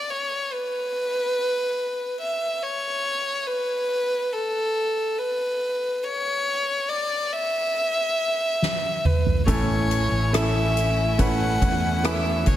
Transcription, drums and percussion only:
8.62 snare soft
9.05 mid tom medium
9.26 floor tom medium
9.48 kick medium
9.48 closed hi-hat medium
9.91 closed hi-hat medium
10.34 cross-stick medium
10.34 closed hi-hat medium
10.77 closed hi-hat medium
11.19 kick medium
11.19 closed hi-hat medium
11.62 kick medium
11.62 closed hi-hat medium
12.04 cross-stick medium
12.04 closed hi-hat medium
12.46 kick medium
12.46 closed hi-hat medium

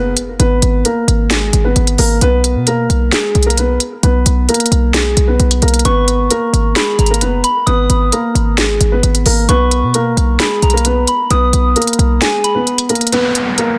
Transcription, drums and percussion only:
0.17 closed hi-hat medium
0.40 closed hi-hat medium
0.62 closed hi-hat medium
0.85 closed hi-hat medium
1.08 closed hi-hat medium
1.30 snare loud
1.30 closed hi-hat medium
1.53 closed hi-hat medium
1.76 closed hi-hat medium
1.87 closed hi-hat medium
1.98 open hi-hat medium
2.21 closed hi-hat medium
2.44 closed hi-hat medium
2.67 closed hi-hat medium
2.90 closed hi-hat medium
3.12 snare loud
3.12 closed hi-hat medium
3.35 closed hi-hat soft
3.43 closed hi-hat medium
3.50 closed hi-hat medium
3.57 closed hi-hat loud
3.80 closed hi-hat medium
4.03 closed hi-hat medium
4.26 closed hi-hat medium
4.49 closed hi-hat medium
4.54 closed hi-hat medium
4.60 closed hi-hat medium
4.66 closed hi-hat medium
4.72 closed hi-hat medium
4.94 snare loud
4.94 closed hi-hat medium
5.17 closed hi-hat medium
5.40 closed hi-hat medium
5.51 closed hi-hat medium
5.62 closed hi-hat soft
5.62 open hi-hat medium
5.68 closed hi-hat medium
5.74 closed hi-hat medium
5.79 closed hi-hat medium
5.85 closed hi-hat medium
6.08 closed hi-hat medium
6.30 closed hi-hat medium
6.54 closed hi-hat medium
6.76 snare loud
6.76 closed hi-hat medium
6.99 closed hi-hat soft
7.06 closed hi-hat medium
7.14 closed hi-hat medium
7.21 closed hi-hat loud
7.44 closed hi-hat medium
7.67 closed hi-hat medium
7.90 closed hi-hat medium
8.12 closed hi-hat medium
8.35 closed hi-hat medium
8.58 snare loud
8.58 closed hi-hat medium
8.81 closed hi-hat medium
9.03 closed hi-hat medium
9.15 closed hi-hat medium
9.26 open hi-hat medium
9.49 closed hi-hat medium
9.71 closed hi-hat medium
9.94 closed hi-hat medium
10.17 closed hi-hat medium
10.40 snare loud
10.40 closed hi-hat medium
10.62 closed hi-hat soft
10.70 closed hi-hat medium
10.77 closed hi-hat medium
10.85 closed hi-hat loud
11.07 closed hi-hat medium
11.30 closed hi-hat medium
11.53 closed hi-hat medium
11.76 closed hi-hat medium
11.82 closed hi-hat medium
11.87 closed hi-hat medium
11.93 closed hi-hat medium
11.99 closed hi-hat medium
12.21 snare loud
12.21 closed hi-hat medium
12.44 closed hi-hat medium
12.67 closed hi-hat medium
12.78 closed hi-hat medium
12.89 closed hi-hat soft
12.89 open hi-hat medium
12.95 closed hi-hat medium
13.01 closed hi-hat medium
13.07 closed hi-hat medium
13.12 closed hi-hat medium
13.35 closed hi-hat medium
13.58 closed hi-hat medium

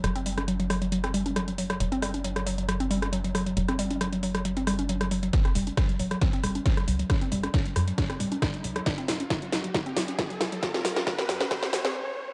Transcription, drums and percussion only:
0.04 cross-stick medium
0.04 closed hi-hat medium
0.16 closed hi-hat soft
0.26 open hi-hat loud
0.38 cross-stick medium
0.38 closed hi-hat soft
0.48 closed hi-hat medium
0.60 closed hi-hat soft
0.70 cross-stick medium
0.70 open hi-hat medium
0.82 closed hi-hat soft
0.92 closed hi-hat medium
1.04 cross-stick medium
1.04 closed hi-hat soft
1.14 open hi-hat loud
1.26 closed hi-hat soft
1.36 cross-stick medium
1.36 closed hi-hat medium
1.48 closed hi-hat soft
1.58 open hi-hat medium
1.70 cross-stick medium
1.70 closed hi-hat medium
1.80 closed hi-hat medium
1.92 closed hi-hat soft
2.02 cross-stick medium
2.02 open hi-hat loud
2.14 closed hi-hat soft
2.24 closed hi-hat medium
2.36 cross-stick medium
2.36 closed hi-hat medium
2.47 open hi-hat medium
2.58 closed hi-hat medium
2.69 cross-stick medium
2.69 closed hi-hat medium
2.80 closed hi-hat soft
2.91 open hi-hat loud
3.02 cross-stick medium
3.02 closed hi-hat medium
3.13 closed hi-hat medium
3.24 closed hi-hat soft
3.35 cross-stick medium
3.35 open hi-hat medium
3.46 closed hi-hat medium
3.57 closed hi-hat medium
3.68 cross-stick medium
3.68 closed hi-hat medium
3.79 open hi-hat loud
3.91 closed hi-hat medium
4.01 cross-stick medium
4.01 closed hi-hat medium
4.13 closed hi-hat medium
4.23 open hi-hat medium
4.35 cross-stick medium
4.35 closed hi-hat medium
4.45 closed hi-hat medium
4.57 closed hi-hat medium
4.67 cross-stick medium
4.67 open hi-hat loud
4.79 closed hi-hat medium
4.89 closed hi-hat medium
5.01 cross-stick medium
5.01 closed hi-hat medium
5.11 open hi-hat medium
5.23 closed hi-hat medium
5.33 kick loud
5.33 snare soft
5.33 closed hi-hat loud
5.45 cross-stick medium
5.45 closed hi-hat medium
5.55 open hi-hat loud
5.67 closed hi-hat medium
5.77 kick loud
5.77 cross-stick medium
5.77 snare soft
5.77 closed hi-hat loud
5.89 closed hi-hat medium
5.99 open hi-hat medium
6.11 cross-stick medium
6.11 closed hi-hat medium
6.21 kick loud
6.21 snare medium
6.21 closed hi-hat loud
6.33 closed hi-hat medium
6.44 cross-stick medium
6.44 open hi-hat loud
6.55 closed hi-hat medium
6.66 kick loud
6.66 snare medium
6.66 closed hi-hat medium
6.77 cross-stick medium
6.77 closed hi-hat medium
6.88 open hi-hat medium
6.99 closed hi-hat medium
7.10 kick loud
7.10 cross-stick medium
7.10 snare medium
7.10 closed hi-hat loud
7.21 closed hi-hat medium
7.32 open hi-hat loud
7.43 cross-stick medium
7.43 closed hi-hat medium
7.54 kick loud
7.54 snare medium
7.54 closed hi-hat loud
7.65 closed hi-hat medium
7.76 cross-stick medium
7.76 open hi-hat loud
7.88 closed hi-hat medium
7.98 kick loud
7.98 snare medium
7.98 closed hi-hat loud
8.10 cross-stick medium
8.10 closed hi-hat medium
8.20 open hi-hat loud
8.32 closed hi-hat medium
8.42 kick loud
8.42 cross-stick medium
8.42 snare medium
8.42 closed hi-hat loud
8.54 closed hi-hat medium
8.64 open hi-hat loud
8.76 cross-stick medium
8.76 closed hi-hat medium
8.86 kick loud
8.86 snare medium
8.86 closed hi-hat loud
8.98 closed hi-hat medium
9.08 snare medium
9.08 open hi-hat loud
9.20 closed hi-hat medium
9.30 kick loud
9.30 snare medium
9.30 closed hi-hat medium
9.42 closed hi-hat medium
9.52 snare medium
9.52 open hi-hat loud
9.64 closed hi-hat medium
9.74 kick loud
9.74 snare medium
9.74 closed hi-hat loud
9.86 closed hi-hat medium
9.97 snare medium
9.97 open hi-hat loud
10.08 closed hi-hat medium
10.19 kick loud
10.19 snare medium
10.19 closed hi-hat loud
10.30 closed hi-hat medium
10.41 snare medium
10.41 open hi-hat loud
10.52 closed hi-hat medium
10.63 kick loud
10.63 snare medium
10.63 closed hi-hat medium
10.74 snare medium
10.74 closed hi-hat medium
10.85 snare medium
10.85 open hi-hat loud
10.96 snare medium
10.96 closed hi-hat medium
11.07 kick loud
11.07 snare loud
11.07 closed hi-hat medium
11.19 snare medium
11.19 closed hi-hat medium
11.29 snare loud
11.29 open hi-hat medium
11.41 snare medium
11.41 closed hi-hat medium
11.51 kick loud
11.51 snare loud
11.51 closed hi-hat medium
11.63 snare medium
11.63 closed hi-hat medium
11.73 snare loud
11.73 open hi-hat loud
11.85 snare medium
11.85 closed hi-hat medium

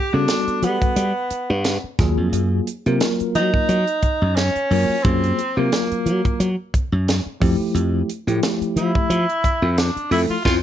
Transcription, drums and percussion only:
0.28 snare medium
0.28 closed hi-hat medium
0.48 closed hi-hat soft
0.63 closed hi-hat medium
0.82 kick medium
0.82 closed hi-hat soft
0.96 closed hi-hat medium
1.30 closed hi-hat medium
1.64 snare medium
1.64 closed hi-hat medium
1.99 kick medium
1.99 snare soft
1.99 closed hi-hat medium
2.33 closed hi-hat medium
2.67 closed hi-hat medium
2.86 closed hi-hat soft
3.00 snare loud
3.00 closed hi-hat medium
3.20 closed hi-hat soft
3.35 closed hi-hat medium
3.54 kick medium
3.69 closed hi-hat medium
3.87 closed hi-hat soft
4.02 kick medium
4.02 closed hi-hat soft
4.37 snare medium
4.37 closed hi-hat medium
4.56 closed hi-hat soft
4.71 open hi-hat medium
5.05 kick loud
5.05 closed hi-hat medium
5.24 closed hi-hat soft
5.39 closed hi-hat medium
5.72 snare loud
5.72 closed hi-hat medium
5.91 closed hi-hat soft
6.06 closed hi-hat medium
6.25 kick medium
6.25 closed hi-hat soft
6.40 closed hi-hat medium
6.74 kick medium
6.74 closed hi-hat medium
7.08 snare medium
7.08 closed hi-hat medium
7.42 kick medium
7.42 open hi-hat medium
7.75 closed hi-hat medium
8.09 closed hi-hat medium
8.28 closed hi-hat soft
8.43 snare loud
8.43 closed hi-hat medium
8.62 closed hi-hat soft
8.77 closed hi-hat medium
8.95 kick medium
9.11 closed hi-hat medium
9.29 closed hi-hat soft
9.44 kick medium
9.44 closed hi-hat medium
9.78 snare medium
9.78 closed hi-hat medium
9.97 closed hi-hat soft
10.12 open hi-hat medium
10.45 kick medium
10.45 snare medium

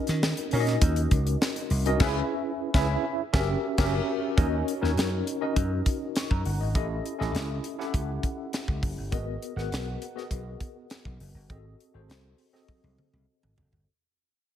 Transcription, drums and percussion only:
0.07 snare soft
0.07 closed hi-hat medium
0.23 snare loud
0.37 closed hi-hat medium
0.51 open hi-hat medium
0.67 snare soft
0.67 closed hi-hat medium
0.81 kick loud
0.81 closed hi-hat loud
0.96 closed hi-hat medium
1.11 kick medium
1.11 closed hi-hat medium
1.27 closed hi-hat medium
1.42 snare loud
1.56 closed hi-hat medium
1.70 open hi-hat medium
1.86 closed hi-hat medium
2.00 kick loud
2.00 snare loud
2.00 crash medium
2.74 kick loud
2.74 snare loud
3.34 kick loud
3.34 snare loud
3.78 kick loud
3.78 snare loud
3.78 crash medium
4.38 kick loud
4.38 closed hi-hat medium
4.68 closed hi-hat medium
4.84 snare soft
4.97 snare loud
4.97 closed hi-hat medium
5.27 closed hi-hat medium
5.56 kick medium
5.56 closed hi-hat loud
5.86 kick loud
5.86 closed hi-hat medium
6.16 snare loud
6.16 closed hi-hat medium
6.31 kick medium
6.45 open hi-hat medium
6.75 kick loud
6.75 closed hi-hat medium
7.06 closed hi-hat medium
7.21 snare soft
7.35 snare loud
7.35 closed hi-hat medium
7.64 closed hi-hat medium
7.80 snare soft
7.94 kick medium
7.94 closed hi-hat loud
8.23 kick medium
8.23 closed hi-hat medium
8.53 snare loud
8.53 closed hi-hat medium
8.68 kick loud
8.83 kick loud
8.83 open hi-hat medium
9.12 kick loud
9.12 closed hi-hat medium
9.42 closed hi-hat medium
9.58 snare soft
9.72 snare loud
9.72 closed hi-hat medium
10.02 closed hi-hat medium
10.18 snare soft
10.31 kick medium
10.31 closed hi-hat loud
10.60 kick medium
10.60 closed hi-hat medium
10.90 snare loud
10.90 closed hi-hat medium
11.05 kick medium
11.20 open hi-hat medium
11.50 kick loud
11.50 closed hi-hat medium
11.80 closed hi-hat medium
12.10 snare loud
12.10 closed hi-hat medium
12.38 open hi-hat medium
12.55 snare soft
12.68 kick medium
12.68 high tom medium
12.84 high tom medium
12.98 mid tom medium
13.14 mid tom medium
13.43 mid tom medium
13.58 floor tom loud
13.73 floor tom medium

